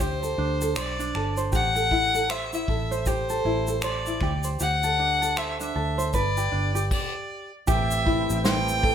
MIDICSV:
0, 0, Header, 1, 6, 480
1, 0, Start_track
1, 0, Tempo, 768246
1, 958, Time_signature, 4, 2, 24, 8
1, 5591, End_track
2, 0, Start_track
2, 0, Title_t, "Violin"
2, 0, Program_c, 0, 40
2, 6, Note_on_c, 0, 72, 86
2, 482, Note_off_c, 0, 72, 0
2, 495, Note_on_c, 0, 74, 81
2, 845, Note_off_c, 0, 74, 0
2, 968, Note_on_c, 0, 78, 118
2, 1442, Note_on_c, 0, 76, 98
2, 1452, Note_off_c, 0, 78, 0
2, 1584, Note_off_c, 0, 76, 0
2, 1587, Note_on_c, 0, 76, 83
2, 1926, Note_on_c, 0, 72, 93
2, 1935, Note_off_c, 0, 76, 0
2, 2402, Note_off_c, 0, 72, 0
2, 2407, Note_on_c, 0, 74, 77
2, 2762, Note_off_c, 0, 74, 0
2, 2886, Note_on_c, 0, 78, 110
2, 3363, Note_on_c, 0, 76, 91
2, 3373, Note_off_c, 0, 78, 0
2, 3505, Note_off_c, 0, 76, 0
2, 3512, Note_on_c, 0, 76, 73
2, 3820, Note_off_c, 0, 76, 0
2, 3846, Note_on_c, 0, 74, 89
2, 4298, Note_off_c, 0, 74, 0
2, 4326, Note_on_c, 0, 74, 68
2, 4682, Note_off_c, 0, 74, 0
2, 4802, Note_on_c, 0, 76, 93
2, 5255, Note_off_c, 0, 76, 0
2, 5294, Note_on_c, 0, 79, 100
2, 5591, Note_off_c, 0, 79, 0
2, 5591, End_track
3, 0, Start_track
3, 0, Title_t, "Ukulele"
3, 0, Program_c, 1, 24
3, 0, Note_on_c, 1, 62, 53
3, 0, Note_on_c, 1, 67, 75
3, 0, Note_on_c, 1, 72, 59
3, 141, Note_on_c, 1, 69, 50
3, 229, Note_off_c, 1, 62, 0
3, 237, Note_on_c, 1, 62, 62
3, 383, Note_off_c, 1, 69, 0
3, 386, Note_on_c, 1, 69, 56
3, 472, Note_off_c, 1, 69, 0
3, 475, Note_off_c, 1, 72, 0
3, 475, Note_on_c, 1, 72, 65
3, 612, Note_off_c, 1, 62, 0
3, 620, Note_on_c, 1, 62, 53
3, 719, Note_on_c, 1, 69, 55
3, 855, Note_off_c, 1, 72, 0
3, 858, Note_on_c, 1, 72, 57
3, 948, Note_off_c, 1, 67, 0
3, 950, Note_on_c, 1, 67, 81
3, 1014, Note_off_c, 1, 62, 0
3, 1094, Note_off_c, 1, 72, 0
3, 1096, Note_off_c, 1, 69, 0
3, 1096, Note_on_c, 1, 69, 53
3, 1195, Note_on_c, 1, 64, 53
3, 1338, Note_off_c, 1, 69, 0
3, 1341, Note_on_c, 1, 69, 58
3, 1435, Note_off_c, 1, 69, 0
3, 1437, Note_on_c, 1, 72, 63
3, 1571, Note_off_c, 1, 64, 0
3, 1579, Note_on_c, 1, 64, 50
3, 1675, Note_off_c, 1, 72, 0
3, 1678, Note_on_c, 1, 69, 62
3, 1819, Note_on_c, 1, 72, 63
3, 1914, Note_off_c, 1, 67, 0
3, 1917, Note_on_c, 1, 67, 82
3, 2058, Note_off_c, 1, 72, 0
3, 2061, Note_off_c, 1, 69, 0
3, 2061, Note_on_c, 1, 69, 58
3, 2150, Note_off_c, 1, 64, 0
3, 2157, Note_on_c, 1, 64, 62
3, 2298, Note_off_c, 1, 69, 0
3, 2298, Note_on_c, 1, 69, 60
3, 2395, Note_off_c, 1, 69, 0
3, 2397, Note_on_c, 1, 72, 72
3, 2534, Note_off_c, 1, 64, 0
3, 2542, Note_on_c, 1, 64, 55
3, 2639, Note_off_c, 1, 67, 0
3, 2639, Note_on_c, 1, 67, 75
3, 2696, Note_off_c, 1, 64, 0
3, 2696, Note_off_c, 1, 72, 0
3, 2776, Note_on_c, 1, 72, 55
3, 2876, Note_off_c, 1, 67, 0
3, 2876, Note_on_c, 1, 67, 78
3, 3022, Note_on_c, 1, 69, 56
3, 3118, Note_on_c, 1, 62, 52
3, 3251, Note_off_c, 1, 69, 0
3, 3259, Note_on_c, 1, 69, 59
3, 3348, Note_off_c, 1, 72, 0
3, 3356, Note_on_c, 1, 72, 71
3, 3499, Note_off_c, 1, 62, 0
3, 3502, Note_on_c, 1, 62, 59
3, 3588, Note_off_c, 1, 69, 0
3, 3596, Note_on_c, 1, 69, 59
3, 3728, Note_off_c, 1, 72, 0
3, 3735, Note_on_c, 1, 72, 65
3, 3836, Note_off_c, 1, 72, 0
3, 3839, Note_on_c, 1, 71, 87
3, 3895, Note_off_c, 1, 69, 0
3, 3896, Note_off_c, 1, 62, 0
3, 3981, Note_off_c, 1, 67, 0
3, 3981, Note_on_c, 1, 67, 59
3, 4071, Note_on_c, 1, 62, 65
3, 4213, Note_off_c, 1, 62, 0
3, 4216, Note_off_c, 1, 67, 0
3, 4216, Note_on_c, 1, 67, 64
3, 4377, Note_off_c, 1, 71, 0
3, 4686, Note_off_c, 1, 67, 0
3, 4793, Note_on_c, 1, 67, 84
3, 5034, Note_on_c, 1, 64, 60
3, 5275, Note_on_c, 1, 72, 76
3, 5515, Note_on_c, 1, 69, 58
3, 5591, Note_off_c, 1, 64, 0
3, 5591, Note_off_c, 1, 67, 0
3, 5591, Note_off_c, 1, 69, 0
3, 5591, Note_off_c, 1, 72, 0
3, 5591, End_track
4, 0, Start_track
4, 0, Title_t, "Tonewheel organ"
4, 0, Program_c, 2, 16
4, 4801, Note_on_c, 2, 52, 71
4, 4804, Note_on_c, 2, 57, 67
4, 4805, Note_on_c, 2, 60, 57
4, 4805, Note_on_c, 2, 67, 76
4, 5591, Note_off_c, 2, 52, 0
4, 5591, Note_off_c, 2, 57, 0
4, 5591, Note_off_c, 2, 60, 0
4, 5591, Note_off_c, 2, 67, 0
4, 5591, End_track
5, 0, Start_track
5, 0, Title_t, "Fingered electric bass"
5, 0, Program_c, 3, 33
5, 0, Note_on_c, 3, 38, 89
5, 213, Note_off_c, 3, 38, 0
5, 239, Note_on_c, 3, 38, 85
5, 459, Note_off_c, 3, 38, 0
5, 478, Note_on_c, 3, 35, 80
5, 698, Note_off_c, 3, 35, 0
5, 716, Note_on_c, 3, 31, 78
5, 938, Note_off_c, 3, 31, 0
5, 957, Note_on_c, 3, 33, 93
5, 1653, Note_off_c, 3, 33, 0
5, 1676, Note_on_c, 3, 33, 81
5, 2133, Note_off_c, 3, 33, 0
5, 2155, Note_on_c, 3, 33, 91
5, 2612, Note_off_c, 3, 33, 0
5, 2633, Note_on_c, 3, 38, 104
5, 2856, Note_off_c, 3, 38, 0
5, 2877, Note_on_c, 3, 38, 91
5, 3573, Note_off_c, 3, 38, 0
5, 3596, Note_on_c, 3, 38, 86
5, 3818, Note_off_c, 3, 38, 0
5, 3834, Note_on_c, 3, 31, 89
5, 4057, Note_off_c, 3, 31, 0
5, 4076, Note_on_c, 3, 31, 99
5, 4298, Note_off_c, 3, 31, 0
5, 4799, Note_on_c, 3, 33, 91
5, 5158, Note_off_c, 3, 33, 0
5, 5187, Note_on_c, 3, 33, 100
5, 5591, Note_off_c, 3, 33, 0
5, 5591, End_track
6, 0, Start_track
6, 0, Title_t, "Drums"
6, 0, Note_on_c, 9, 36, 69
6, 0, Note_on_c, 9, 82, 69
6, 60, Note_off_c, 9, 36, 0
6, 60, Note_off_c, 9, 82, 0
6, 145, Note_on_c, 9, 82, 42
6, 208, Note_off_c, 9, 82, 0
6, 383, Note_on_c, 9, 82, 55
6, 445, Note_off_c, 9, 82, 0
6, 475, Note_on_c, 9, 82, 70
6, 476, Note_on_c, 9, 26, 104
6, 538, Note_off_c, 9, 26, 0
6, 538, Note_off_c, 9, 82, 0
6, 625, Note_on_c, 9, 82, 47
6, 687, Note_off_c, 9, 82, 0
6, 718, Note_on_c, 9, 26, 33
6, 781, Note_off_c, 9, 26, 0
6, 856, Note_on_c, 9, 82, 49
6, 919, Note_off_c, 9, 82, 0
6, 955, Note_on_c, 9, 82, 76
6, 956, Note_on_c, 9, 36, 98
6, 1017, Note_off_c, 9, 82, 0
6, 1019, Note_off_c, 9, 36, 0
6, 1099, Note_on_c, 9, 82, 44
6, 1162, Note_off_c, 9, 82, 0
6, 1196, Note_on_c, 9, 36, 72
6, 1258, Note_off_c, 9, 36, 0
6, 1341, Note_on_c, 9, 82, 50
6, 1403, Note_off_c, 9, 82, 0
6, 1436, Note_on_c, 9, 26, 90
6, 1436, Note_on_c, 9, 82, 59
6, 1499, Note_off_c, 9, 26, 0
6, 1499, Note_off_c, 9, 82, 0
6, 1580, Note_on_c, 9, 82, 47
6, 1642, Note_off_c, 9, 82, 0
6, 1675, Note_on_c, 9, 36, 85
6, 1738, Note_off_c, 9, 36, 0
6, 1824, Note_on_c, 9, 82, 45
6, 1887, Note_off_c, 9, 82, 0
6, 1913, Note_on_c, 9, 82, 74
6, 1914, Note_on_c, 9, 36, 78
6, 1975, Note_off_c, 9, 82, 0
6, 1976, Note_off_c, 9, 36, 0
6, 2058, Note_on_c, 9, 82, 45
6, 2120, Note_off_c, 9, 82, 0
6, 2294, Note_on_c, 9, 82, 55
6, 2357, Note_off_c, 9, 82, 0
6, 2387, Note_on_c, 9, 26, 109
6, 2387, Note_on_c, 9, 82, 72
6, 2449, Note_off_c, 9, 82, 0
6, 2450, Note_off_c, 9, 26, 0
6, 2538, Note_on_c, 9, 82, 46
6, 2601, Note_off_c, 9, 82, 0
6, 2628, Note_on_c, 9, 26, 32
6, 2632, Note_on_c, 9, 36, 97
6, 2690, Note_off_c, 9, 26, 0
6, 2695, Note_off_c, 9, 36, 0
6, 2771, Note_on_c, 9, 82, 53
6, 2833, Note_off_c, 9, 82, 0
6, 2872, Note_on_c, 9, 82, 83
6, 2935, Note_off_c, 9, 82, 0
6, 3018, Note_on_c, 9, 82, 49
6, 3080, Note_off_c, 9, 82, 0
6, 3264, Note_on_c, 9, 82, 49
6, 3326, Note_off_c, 9, 82, 0
6, 3356, Note_on_c, 9, 26, 98
6, 3356, Note_on_c, 9, 82, 58
6, 3418, Note_off_c, 9, 26, 0
6, 3418, Note_off_c, 9, 82, 0
6, 3502, Note_on_c, 9, 82, 50
6, 3564, Note_off_c, 9, 82, 0
6, 3743, Note_on_c, 9, 82, 51
6, 3806, Note_off_c, 9, 82, 0
6, 3834, Note_on_c, 9, 82, 73
6, 3835, Note_on_c, 9, 36, 86
6, 3896, Note_off_c, 9, 82, 0
6, 3897, Note_off_c, 9, 36, 0
6, 3981, Note_on_c, 9, 82, 48
6, 4043, Note_off_c, 9, 82, 0
6, 4222, Note_on_c, 9, 82, 54
6, 4285, Note_off_c, 9, 82, 0
6, 4317, Note_on_c, 9, 49, 89
6, 4318, Note_on_c, 9, 36, 101
6, 4380, Note_off_c, 9, 49, 0
6, 4381, Note_off_c, 9, 36, 0
6, 4797, Note_on_c, 9, 82, 84
6, 4800, Note_on_c, 9, 36, 121
6, 4859, Note_off_c, 9, 82, 0
6, 4862, Note_off_c, 9, 36, 0
6, 4941, Note_on_c, 9, 82, 47
6, 5004, Note_off_c, 9, 82, 0
6, 5040, Note_on_c, 9, 36, 92
6, 5102, Note_off_c, 9, 36, 0
6, 5185, Note_on_c, 9, 82, 58
6, 5247, Note_off_c, 9, 82, 0
6, 5282, Note_on_c, 9, 38, 120
6, 5282, Note_on_c, 9, 82, 69
6, 5344, Note_off_c, 9, 82, 0
6, 5345, Note_off_c, 9, 38, 0
6, 5425, Note_on_c, 9, 82, 52
6, 5488, Note_off_c, 9, 82, 0
6, 5520, Note_on_c, 9, 36, 97
6, 5583, Note_off_c, 9, 36, 0
6, 5591, End_track
0, 0, End_of_file